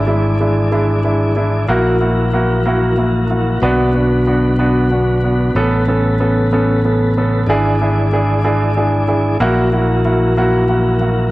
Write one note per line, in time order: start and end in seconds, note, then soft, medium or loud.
0.00 1.65 G#1 medium
0.00 3.58 E3 soft
0.00 1.67 G#3 soft
0.00 1.67 D4 medium
0.07 0.34 G#3 medium
0.07 0.34 D4 soft
0.07 0.34 E4 medium
0.41 0.66 G#3 medium
0.41 0.67 D4 medium
0.41 0.67 E4 medium
0.72 0.98 G#3 medium
0.72 0.98 D4 medium
0.72 0.98 E4 medium
1.05 1.31 G#3 soft
1.05 1.31 D4 soft
1.05 1.31 E4 medium
1.36 1.62 G#3 soft
1.36 1.63 D4 medium
1.36 1.63 E4 medium
1.69 3.58 A#1 medium
1.69 5.51 F#3 soft
1.69 1.95 A#3 medium
1.69 3.61 A#3 medium
1.69 1.95 E4 medium
1.69 1.95 F#4 medium
2.01 2.27 A#3 medium
2.01 2.27 E4 medium
2.01 2.27 F#4 medium
2.33 2.59 A#3 medium
2.33 2.60 E4 soft
2.33 2.60 F#4 medium
2.66 2.92 A#3 medium
2.66 2.92 E4 medium
2.66 2.92 F#4 medium
2.98 3.24 A#3 medium
2.98 3.24 E4 soft
2.98 3.24 F#4 medium
3.30 3.56 A#3 soft
3.30 3.56 E4 soft
3.30 3.56 F#4 medium
3.62 5.51 B1 medium
3.62 5.53 D3 medium
3.62 7.44 B3 soft
3.62 3.88 B3 medium
3.62 3.88 D4 medium
3.62 3.88 F#4 medium
3.95 4.20 B3 medium
3.95 4.20 D4 soft
3.95 4.21 F#4 medium
4.27 4.53 B3 medium
4.27 4.53 D4 soft
4.27 4.53 F#4 medium
4.59 4.85 B3 medium
4.59 4.85 D4 medium
4.59 4.85 F#4 medium
4.91 5.17 B3 soft
4.91 5.17 D4 soft
4.91 5.17 F#4 medium
5.24 5.49 B3 soft
5.24 5.49 D4 soft
5.24 5.49 F#4 medium
5.55 7.44 A1 medium
5.55 7.46 C#3 medium
5.55 7.46 A3 soft
5.55 5.81 B3 medium
5.55 5.81 C#4 medium
5.55 5.81 A4 medium
5.88 6.13 B3 medium
5.88 6.13 C#4 medium
5.88 6.14 A4 medium
6.20 6.45 B3 medium
6.20 6.46 C#4 medium
6.20 6.46 A4 medium
6.52 6.78 B3 medium
6.52 6.78 C#4 medium
6.52 6.78 A4 medium
6.85 7.10 B3 medium
6.85 7.10 C#4 medium
6.85 7.10 A4 medium
7.17 7.42 B3 medium
7.17 7.42 C#4 soft
7.17 7.42 A4 medium
7.46 9.36 G#1 medium
7.46 9.38 E3 medium
7.46 9.38 G#3 soft
7.46 9.38 D4 medium
7.46 7.74 D4 medium
7.46 7.74 E4 medium
7.46 7.74 G#4 medium
7.81 8.06 D4 medium
7.81 8.06 E4 medium
7.81 8.07 G#4 medium
8.12 8.38 D4 medium
8.12 8.38 E4 medium
8.12 8.38 G#4 medium
8.44 8.70 D4 medium
8.44 8.70 E4 medium
8.44 8.70 G#4 medium
8.77 9.02 D4 medium
8.77 9.02 E4 soft
8.77 9.03 G#4 medium
9.08 9.34 D4 soft
9.08 9.34 E4 soft
9.08 9.34 G#4 medium
9.40 11.29 A#1 medium
9.40 11.31 E3 medium
9.40 11.30 F#3 medium
9.40 9.66 A#3 medium
9.40 11.31 A#3 medium
9.40 9.66 E4 medium
9.40 9.66 F#4 loud
9.73 9.99 A#3 medium
9.73 9.99 E4 medium
9.73 9.99 F#4 medium
10.05 10.31 A#3 medium
10.05 10.31 E4 medium
10.05 10.31 F#4 medium
10.37 10.63 A#3 medium
10.37 10.63 E4 medium
10.37 10.63 F#4 medium
10.69 10.95 A#3 medium
10.69 10.95 E4 soft
10.69 10.95 F#4 medium
11.01 11.27 A#3 soft
11.01 11.27 E4 soft
11.01 11.27 F#4 medium